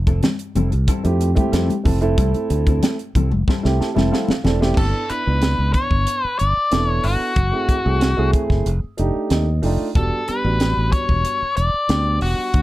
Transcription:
Already playing: F1
0.07 C4 E4 A4, kick, closed hi-hat
0.23 muted clean electric guitar stroke, snare, closed hi-hat, high conga, low conga
0.39 closed hi-hat
0.55 F1 G3 C4 E4 A4, closed hi-hat, low conga
0.72 C2, muted clean electric guitar stroke, closed hi-hat
0.88 G3 C4 E4 A4, kick, closed hi-hat
1.04 F2 A3 C4 E4 G4, muted clean electric guitar stroke, closed hi-hat
1.20 muted clean electric guitar stroke, closed hi-hat
1.35 A3 C4 E4 G4, muted clean electric guitar stroke, muted fingered electric bass stroke, kick, closed hi-hat, high conga
1.52 F2 G3 C4 E4 A4, snare, closed hi-hat
1.69 muted clean electric guitar stroke, closed hi-hat, high conga
1.84 F1 A3 C4 E4 A4, kick, open hi-hat, low conga
2.01 A3 C4 E4 A4, closed hi-hat
2.18 C2 G3 C4 E4 A4, kick, closed hi-hat
2.34 muted fingered electric bass stroke, muted clean electric guitar stroke, closed hi-hat
2.50 D2, muted clean electric guitar stroke, closed hi-hat
2.67 C4 E4 A4, kick, closed hi-hat
2.83 muted clean electric guitar stroke, snare, closed hi-hat, high conga
2.99 closed hi-hat
3.15 C2 G3 C4 E4 A4, kick, closed hi-hat, low conga
3.32 F1, muted clean electric guitar stroke, high conga
3.48 G3 C4 E4 A4, kick, snare
3.63 C2 A3 C4 E4 G4, muted clean electric guitar stroke, snare
3.80 A5, muted fingered electric bass stroke, muted clean electric guitar stroke, snare
3.94 F1 A3 C4 E4 A4, muted clean electric guitar stroke, snare, high conga
4.12 G3 C4 E4 A4 F5, snare
4.28 muted clean electric guitar stroke, muted fingered electric bass stroke, snare, high conga
4.44 E1 A3 C4 E4 A4 D5, snare, low conga
4.60 A3 C4 E4 G4, snare
4.77 G1 B3 D4 E4 A4, kick, crash
5.09 B3 D4 E4 B4, muted fingered electric bass stroke, closed hi-hat
5.27 C#2 B3 D4 E4 B4
5.42 snare, closed hi-hat
5.59 C#2
5.73 C#5, kick, closed hi-hat
5.91 G1, kick
6.07 closed hi-hat
6.24 B4, muted fingered electric bass stroke
6.39 G1 D5, closed hi-hat
6.71 E1 B3 D4 E4 A4, snare, closed hi-hat
6.86 C#5
7.04 G1 F#4, open hi-hat
7.36 F#1, kick, closed hi-hat
7.52 A3 C4 E4 G#4
7.69 muted fingered electric bass stroke, kick, closed hi-hat
7.84 C2 A3 C4 E4 G#4
8.01 snare, closed hi-hat
8.17 C2 A3 C4 E4 G#4
8.33 kick, closed hi-hat
8.50 F#1, kick, snare
8.66 F1, closed hi-hat
8.84 muted fingered electric bass stroke
8.97 F1 A3 D4 D#4 G4, closed hi-hat
9.16 muted fingered electric bass stroke
9.30 D#2 D#5, snare, closed hi-hat
9.62 F1 A3 D4 D#4 F4 G5, open hi-hat
9.95 E1 G3 B3 D4 F#4 A4, kick, closed hi-hat
10.27 G3 B3 D4 G4 B4, muted fingered electric bass stroke, closed hi-hat
10.44 A1 G3 B3 D4 F#4
10.60 snare, closed hi-hat
10.77 A1
10.92 C#5, kick, closed hi-hat
11.09 E1, kick
11.25 closed hi-hat
11.42 muted fingered electric bass stroke
11.57 E1 D5, closed hi-hat
11.74 muted fingered electric bass stroke
11.88 D2 G3 B3 D4 G4, snare, closed hi-hat
12.21 E1 F#4, open hi-hat
12.39 muted fingered electric bass stroke
12.54 D2, kick, closed hi-hat

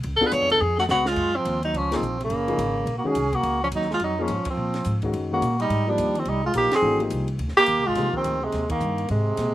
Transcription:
0.03 C#2, ride
0.16 A4
0.21 B3 D4 F4 G#4, kick
0.26 B4
0.32 F#2 C#5, hi-hat pedal, ride
0.41 F2
0.50 C#2 A4, ride
0.61 F2 G#4
0.78 A3 F#4, snare
0.89 C#2 B3 F#4, snare, hi-hat pedal
1.06 G#3 F4, snare
1.16 F#2, kick, crash
1.36 F3 C4
1.45 D#2, hi-hat pedal, ride
1.63 F#3 D#4, ride
1.73 C#2 F3 C#4, ride
1.91 F3 A#3 D#4 G#4, snare, ride
1.95 C4
2.01 A#1, hi-hat pedal
2.20 C#3, ride
2.25 A#3
2.30 F#1, ride
2.47 F3 A#3 D#4 G#4, ride
2.58 G#1, hi-hat pedal, ride
2.86 A#1, ride
2.97 A#3 F#4
3.04 D#3 G#3 C#4 F#4 G#4, muted upright bass stroke
3.15 C2, hi-hat pedal, ride
3.33 A#3 F#4, kick, ride
3.43 C#2, ride
3.63 F3 C#4
3.72 D#2 F#3, hi-hat pedal, ride
3.76 D#4
3.82 snare
3.91 G#3 F4, snare
4.00 F2 F#3, ride
4.04 D#4
4.19 F3 A#3 D#4 G#4
4.23 C#4
4.28 G#2, hi-hat pedal, ride
4.45 muted upright bass stroke, kick, ride
4.50 F3 C4
4.57 A#2
4.74 snare, ride
4.84 G#2, hi-hat pedal, ride
5.02 D#3 G#3 C#4 F#4, kick, ride
5.13 F#2, ride
5.32 D#3 G#3 A#3 C#4 F#4
5.42 A#2, hi-hat pedal, ride
5.60 G3 D#4, ride
5.70 G#2, ride
5.87 F3 G3 A#3 D4 D#4 G4
5.98 D#2, hi-hat pedal, ride
6.15 D#3, ride
6.20 C4
6.25 C2 G3 D#4, ride
6.44 G#3 F4
6.54 A#1 F3 A#3 D#4 G4, hi-hat pedal, ride
6.71 C4, muted upright bass stroke, snare, ride
6.76 G#4
6.82 G#1 E3 A3 D4 F#4
6.99 F3 A#3 D#4 G4, ride
7.10 C2, hi-hat pedal, ride
7.28 ride
7.39 D2, ride
7.48 snare
7.57 A#3 G4, muted upright bass stroke, snare
7.66 D#2, hi-hat pedal, ride
7.77 C2
7.85 G#1 G#3 F4
7.95 C2 F3 A#3 D#4 G4, snare, ride
8.13 D#3 C4, muted upright bass stroke, kick
8.24 D2, hi-hat pedal, ride
8.41 C3 G#3
8.52 D#2, snare, ride
8.69 D#3 A#3, kick, ride
8.80 G2, hi-hat pedal
8.98 ride
9.08 G#2 C3 G#3, ride
9.37 A#2, snare, hi-hat pedal, ride

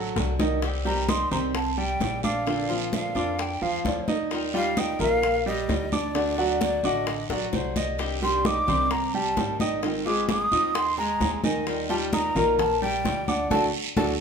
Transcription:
Already playing: A1 F#3 F#4 A4
0.16 C2 D3 A3 D4 F#4, high bongo, high conga, short guiro
0.39 D#3 D#4 D#5, low bongo, high conga, short guiro
0.62 C3 D#3 G3 C4 G4, high bongo, high conga, long guiro
0.85 D#3 G3 C4 G4 G5 A#5, high bongo, high conga
1.08 D#3 G3 C4 D#4 G4 D#5 C6 D#6, high bongo, high conga, short guiro
1.31 C2 D#3 G3 C4 G4 C5 A#5 C6, high bongo, high conga, low conga, short guiro
1.55 A5, muted nylon-string guitar stroke, high bongo, high conga, long guiro
1.77 G3 G4 G5, high conga
2.00 A#1 D#3 G3 C4 G4, high bongo, low bongo, high conga, short guiro
2.23 D4 D5 F5 D6, high bongo, high conga, short guiro
2.46 D3 A#3 C4 D4 F4 D5, high bongo, high conga, long guiro
2.69 F3 A#3 C4 F4 F5, high bongo, high conga
2.92 D3 A#3 C4 F4 F5, high bongo, high conga, short guiro
3.15 F2 A#3 C4 D4 F4 D5 D6, high bongo, high conga, short guiro
3.39 G5, muted nylon-string guitar stroke, high bongo, high conga, long guiro
3.62 F2 F3 F4 F5, high conga
3.84 D#2 D3 A#3 C4 F4 D5, high bongo, low bongo, high conga, short guiro
4.08 D#4 D#5, high bongo, high conga, short guiro
4.31 D#3 G3 D#4 F4, high bongo, high conga, long guiro
4.54 G3 D#4 F4 G4 F5 G5, high bongo, high conga
4.76 D#3 G3 D#4 F4 D#5 G5 D#6, high bongo, high conga, short guiro
4.99 A#1 G3 A#3 D#4 F4 A#4 F5 A#5, high bongo, high conga, low conga, short guiro
5.23 muted nylon-string guitar stroke, high bongo, high conga, long guiro
5.46 G3 G4 D#5 G5, high conga
5.68 D2 G3 D#4 F4, high bongo, low bongo, high conga, short guiro
5.92 D4 D5 D6, high bongo, high conga, short guiro
6.14 D3 A3 D4 F#4 D5, high bongo, high conga, long guiro
6.38 F#3 A3 D4 F#4 F#5, high bongo, high conga
6.61 D3 A3 D4 F#4 D5, high bongo, high conga, short guiro
6.83 A1 D3 A3 D4 F#4 D#5 F#5 D6, high bongo, high conga, short guiro
7.07 muted nylon-string guitar stroke, high bongo, high conga, long guiro
7.29 A#1 F#3 F#4 D5 F#5, high bongo, high conga
7.53 C2 D3 A3 D4 F#4 C5, low bongo, high conga, short guiro
7.76 D#5, low bongo, high conga, short guiro
7.98 C3 D#3 G3 D4 G4, high bongo, high conga, long guiro
8.21 D#3 G3 D4 G4 G5 C6, high bongo, high conga
8.44 D#3 G3 D4 D#4 G4 D#5 D6 D#6, high bongo, high conga, short guiro
8.67 C2 D#3 G3 C4 D4 G4 C5 C6, high bongo, high conga, low conga, short guiro
8.90 A#5, muted nylon-string guitar stroke, high bongo, high conga, long guiro
9.14 G3 G4 G5 A5, high conga
9.36 G#1 D#3 G3 D4 G4, high bongo, low bongo, high conga, short guiro
9.60 D#4 D#5 G5 D#6, high bongo, high conga, short guiro
9.82 D#3 G#3 C4 D#4 F4 D#5, high bongo, high conga, long guiro
10.05 G#3 C4 F4 G#4 G#5 D6, high bongo, high conga
10.28 G#3 C4 F4 D#6, high bongo, high conga, short guiro
10.52 D#2 C4 D#4 F4 D#5 D#6, high bongo, high conga, short guiro
10.74 C6, muted nylon-string guitar stroke, high bongo, high conga, long guiro
10.98 G#3 G#4 G#5 A#5, high conga
11.20 D#2 G#3 C4 F4, high bongo, low bongo, high conga, short guiro
11.44 D#3 D#4 D#5 G#5, high bongo, high conga, short guiro
11.67 D#3 G3 D#4 F4, high bongo, high conga, long guiro
11.89 G3 D#4 F4 G4 G5 A5, high bongo, high conga
12.12 D#3 G3 D#4 F4 D#5 A#5 D#6, high bongo, high conga, short guiro
12.35 A#1 G3 A#3 D#4 F4 A#4 A#5, high bongo, high conga, low conga, short guiro
12.59 A5, muted nylon-string guitar stroke, high bongo, high conga, low conga, long guiro
12.82 G3 G4 G5, high conga
13.04 D2 G3 D#4 F4, high bongo, low bongo, high conga, short guiro
13.28 D4 D5 F#5 D6, high bongo, high conga, short guiro
13.50 D2 F#3 A3 D4 F#4 A4 A5, low bongo, high conga, long guiro
13.96 D2 F#3 A3 D4 F#4 A4 A5, low bongo, high conga, long guiro

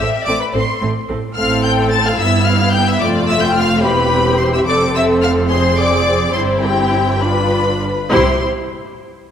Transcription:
0.00 E5
0.26 A1 A2 C4 A4 D5 D6
0.41 B4 B5
0.54 A1 A2 C4 A4 C5 C6
0.81 A1 A2 C4 A4
1.08 A1 A2 C4 A4
1.36 A1 A2 C4 A4 F5 F6
1.64 G5 G6
1.90 A5 A6
2.04 F5 F6
2.16 G1 G2 B3 E4 E5 E6
2.45 F5 F6
2.72 G5 G6
2.87 E5 E6
3.00 F1 F2 A3 F4 D5 D6
3.28 E5 E6
3.43 G5 G6
3.56 F5 F6
3.83 E1 E2 C4 G4 B4 B5
4.40 C5 C6
4.54 E5 E6
4.67 F1 F2 C4 A4 D5 D6
4.96 E5 E6
5.23 F5 F6
5.49 C4 G#4 C5 C6
5.78 D5 D6
6.33 G1 G2 C4 E4 C5 C6
6.61 G4 G5
7.19 D4 F4 B4 B5
8.11 C2 C3 E4 G4 C5 C6

